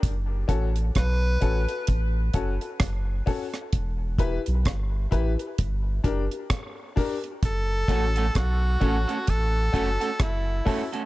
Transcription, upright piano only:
X:1
M:4/4
L:1/16
Q:"Swing 16ths" 1/4=65
K:F#phr
V:1 name="Upright piano"
z2 [CFA] z3 [CFA] [FA] z2 [CFA] [FA] z2 [CFA] z | z2 [EGB] z3 [EGB] [GB] z2 [DG_B] [GB] z2 [DGB] z | z2 [CFA] z3 [CFA] [FA] z2 [CFA] [FA] z2 [CFA] z |]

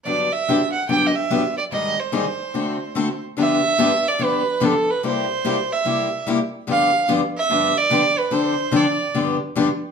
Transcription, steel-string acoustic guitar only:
X:1
M:4/4
L:1/8
Q:"Swing" 1/4=146
K:G
V:1 name="Steel-string acoustic guitar"
[G,,D,F,B,DG] z [G,,D,F,B,DG] z [G,,D,F,B,DG] z [G,,D,F,B,DG] z | [_A,,_E,G,C_E_A] z [A,,E,G,CEA] z [D,=A,CF=A] z [D,A,CFA] z | [K:Gmix] [G,,D,F,B,DG] z [G,,D,F,B,DG] z [G,,D,F,B,DG] z [G,,D,F,B,DG] z | [C,G,_B,EG] z [C,G,B,EG] z [C,G,B,EG] z [C,G,B,EG] z |
[G,,D,F,B,DG] z [G,,D,F,B,DG] z [G,,D,F,B,DG] z [G,,D,F,B,DG] z | [D,F,CDA] z [D,F,CDA] z [G,,D,F,B,DG] z [G,,D,F,B,DG] z |]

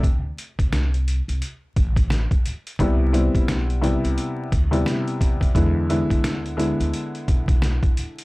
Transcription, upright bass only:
X:1
M:4/4
L:1/16
Q:"Swing 16ths" 1/4=87
K:Dmix
V:1 name="Upright bass" clef=bass
D,,2 z C,,4 C,, z2 A,,,3 z3 | C,,3 B,,,4 C,, z2 D,,2 z3 ^D,, | E,,3 D,,4 D,, z2 B,,,3 z3 |]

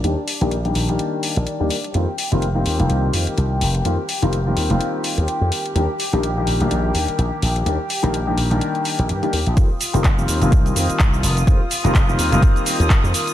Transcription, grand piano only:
X:1
M:4/4
L:1/16
Q:"Swing 16ths" 1/4=126
K:Eblyd
V:1 name="Grand piano"
[E,G,B,DG] z2 [E,G,B,DG] z [E,G,B,DG]2 [E,G,B,DG]6 [E,G,B,DG] z2 | [E,G,B,CF] z2 [E,G,B,CF] z [E,G,B,CF]2 [E,G,B,CF]8- [E,G,B,CF] | [E,G,B,CF] z2 [E,G,B,CF] z [E,G,B,CF]2 [E,G,B,CF]8- [E,G,B,CF] | [E,G,B,DG] z2 [E,G,B,DG] z [E,G,B,DG]2 [E,G,B,DG]8- [E,G,B,DG] |
[E,G,B,DG] z2 [E,G,B,DG] z [E,G,B,DG]2 [E,G,B,DG]6 [E,G,B,DG] z2 | [E,G,B,CF] z2 [E,G,B,CF] z [E,G,B,CF]2 [E,G,B,CF]8- [E,G,B,CF] | [E,G,B,CF] z2 [E,G,B,CF] z [E,G,B,CF]2 [E,G,B,CF]8- [E,G,B,CF] |]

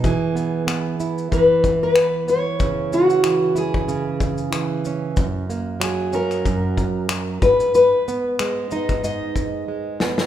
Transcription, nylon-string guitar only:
X:1
M:4/4
L:1/8
Q:"Swing 16ths" 1/4=93
K:Elyd
V:1 name="Nylon-string guitar" clef=bass
E, B, B, E E,2 B, B, | C, C E, E C,2 E, C | F,, A, F, C F,,2 F, G,, | G,, B, G, D G,,2 G, B, |]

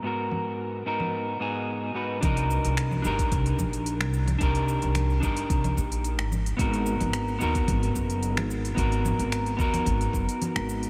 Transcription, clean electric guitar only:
X:1
M:4/4
L:1/8
Q:1/4=110
K:Ablyd
V:1 name="Clean electric guitar"
[A,,_CE_GB]3 [A,,CEGB]2 [A,,CEGA]2 [A,,CEG_c] | [DEGB]3 [DEGB]4- [DEGB] | [DEGB]3 [DEGB]4 z | [_CE_GB]3 [CEGB]4- [CEGB] |
[_CE_GB]3 [CEGB]4- [CEGB] |]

